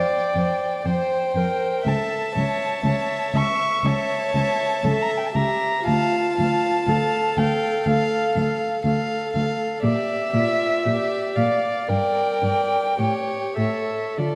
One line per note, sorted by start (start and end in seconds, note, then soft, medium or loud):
0.00 0.35 C5 soft
0.00 0.87 D5 medium
0.00 0.85 G5 medium
0.35 0.43 F2 soft
0.35 0.84 C5 soft
0.85 0.93 F2 soft
0.85 1.34 C5 soft
0.85 1.38 C5 soft
0.85 1.89 G5 medium
1.35 1.43 F2 soft
1.35 1.88 A#4 medium
1.35 1.84 C5 soft
1.85 1.94 C#2 medium
1.85 2.36 A4 medium
1.85 2.35 E5 soft
1.85 3.39 A5 medium
2.35 2.44 C#2 medium
2.35 2.85 C#5 medium
2.35 2.83 E5 soft
2.84 2.92 C#2 medium
2.84 3.37 C#5 medium
2.84 3.34 E5 soft
3.34 3.42 C#2 medium
3.34 3.84 E5 soft
3.34 3.87 E5 medium
3.34 3.87 C#6 medium
3.84 3.92 C#2 medium
3.84 4.86 C#5 medium
3.84 4.34 E5 soft
3.84 5.03 A5 medium
4.35 4.43 C#2 soft
4.35 4.84 E5 soft
4.84 4.92 C#2 medium
4.84 5.34 A4 medium
4.84 5.34 E5 medium
5.02 5.12 A#5 medium
5.11 5.19 A5 medium
5.18 5.28 G5 medium
5.26 5.37 A5 medium
5.35 5.44 C#2 medium
5.35 5.86 G4 medium
5.35 5.86 E5 soft
5.35 5.86 A#5 medium
5.86 5.95 D2 medium
5.86 6.90 F4 medium
5.86 6.37 F5 medium
5.86 7.39 A5 medium
6.38 6.47 D2 medium
6.38 6.88 F5 soft
6.88 6.96 D2 medium
6.88 8.85 A4 medium
6.88 7.37 F5 soft
7.38 7.46 D2 medium
7.38 7.86 F5 soft
7.38 7.88 G5 medium
7.86 7.95 D2 medium
7.86 8.85 F5 medium
7.86 8.35 F5 medium
8.36 8.44 D2 medium
8.36 8.84 F5 soft
8.85 8.93 D2 medium
8.85 9.84 A4 medium
8.85 9.33 F5 medium
9.33 9.43 D2 medium
9.33 9.82 F5 soft
9.83 9.91 A#2 medium
9.83 10.36 G4 medium
9.83 10.32 D5 soft
9.83 11.37 E5 medium
10.34 10.42 A#2 medium
10.34 10.87 F4 medium
10.34 10.84 D5 soft
10.85 10.94 A#2 soft
10.85 11.37 G4 soft
10.85 11.36 D5 soft
11.35 11.45 A#2 medium
11.35 11.90 D5 medium
11.35 11.88 D5 soft
11.35 11.90 F5 medium
11.88 11.97 G2 soft
11.88 12.98 A#4 medium
11.88 12.42 D5 soft
11.88 13.56 G5 medium
12.43 12.51 G2 soft
12.43 12.98 D5 soft
12.99 13.07 A2 soft
12.99 13.58 G4 soft
12.99 13.57 C#5 soft
13.56 13.66 A2 soft
13.56 14.20 A4 soft
13.56 14.18 C#5 soft
13.56 14.20 E5 medium
14.18 14.26 D3 soft
14.18 14.35 F4 soft
14.18 14.35 A4 soft
14.18 14.35 D5 medium